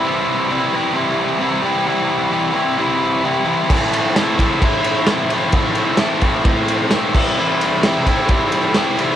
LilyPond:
<<
  \new Staff \with { instrumentName = "Overdriven electric guitar" } { \clef bass \time 4/4 \key c \major \tempo 4 = 131 <c e g c' e'>4 <c e g c' e'>8 <c e g c' e'>8 <c e g c' e'>4 <c e g c' e'>8 <c e g c' e'>8 | <c e g c' e'>4 <c e g c' e'>8 <c e g c' e'>8 <c e g c' e'>4 <c e g c' e'>8 <c e g c' e'>8 | <a, e a c' e'>4 <a, e a c' e'>8 <a, e a c' e'>8 <a, e a c' e'>4 <a, e a c' e'>8 <a, e a c' e'>8 | <a, e a c' e'>4 <a, e a c' e'>8 <a, e a c' e'>8 <a, e a c' e'>4 <a, e a c' e'>8 <c e g c' e'>8 |
<c e g c' e'>4 <c e g c' e'>8 <c e g c' e'>8 <c e g c' e'>4 <c e g c' e'>8 <c e g c' e'>8 | }
  \new DrumStaff \with { instrumentName = "Drums" } \drummode { \time 4/4 r4 r4 r4 r4 | r4 r4 r4 r4 | <cymc bd>8 cymr8 <cymr sn>8 <bd cymr>8 <bd cymr>8 cymr8 <cymr sn>8 cymr8 | <bd cymr>8 cymr8 <cymr sn>8 <bd cymr>8 <bd cymr>8 cymr8 <cymr sn>8 <cymc bd>8 |
r8 cymr8 <cymr sn>8 <bd cymr>8 <bd cymr>8 cymr8 <cymr sn>8 cymr8 | }
>>